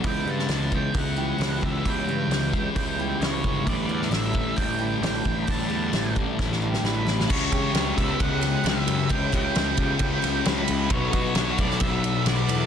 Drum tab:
CC |----------------|----------------|----------------|----------------|
RD |----------------|----------------|----------------|----------------|
HH |o---o---o---o---|o---o---o---o---|o---o---o---o---|o---o-----------|
SD |---oo-------o---|----o-------o---|---oo-------o---|----o---oo-oo-oo|
BD |o-----o-o-----o-|o-----o-o-----o-|o-----o-o-----o-|o-----o-o-------|

CC |x---------------|----------------|----------------|
RD |--x-x-x-x-x-x-x-|x-x-x-x-x-x-x-x-|x-x-x-x-x-x-x-x-|
HH |----------------|----------------|----------------|
SD |----o-----o-o---|----o-----o-o---|----o--o----o---|
BD |o-o---o-o-------|o-o---o-o-------|o-o---o-o-------|